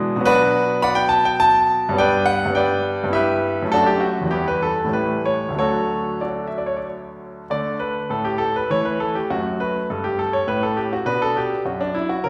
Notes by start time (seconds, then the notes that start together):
Already playing: B2 E3 G#3 D4
0.16 B2 F#3
0.21 B3
0.25 D4 F#4 B4
0.82 D5 F#5 B5
0.95 G5
1.09 A5
1.25 G5
1.40 A5
1.89 G2 G3
1.93 B3 D4
1.98 B4 D5 G5
2.26 F#5
2.46 G2 G3
2.50 B3 D4
2.55 B4 D5 G5
3.04 G2 G3
3.09 B3 E4
3.13 G4 B4 E5
3.62 F#2 A3
3.72 D4 F#4 A4
3.86 G4
4.00 F#4
4.21 E2 E3
4.26 G3
4.31 B3 E4 G4
4.48 B4
4.62 A4
4.85 A2 E3
4.89 G3 A3
4.93 B4
5.26 C#5
5.49 D2 D3
5.53 F#3 A3
5.59 F#4 A4 C#5
6.21 F#4 A4 D5
6.48 E5
6.58 D5
6.66 C#5
6.77 D5
7.50 D3 A3 D5
7.79 B4
8.10 A2 A4
8.25 G4
8.38 A4
8.56 B4
8.70 E3 A3 C#5
8.85 B4
9.00 A4
9.15 G4
9.30 F#2 A3 F#4
9.60 B4
9.90 G2 A4
10.04 G4
10.19 A4
10.33 C#5
10.47 A2 B4
10.63 A4
10.77 G4
10.93 F#4
11.06 B2 D4 B4
11.22 A4
11.37 G4
11.65 F#2 F#4
11.81 D4
11.94 E4
12.09 F#4
12.23 C#3 C#4 A#4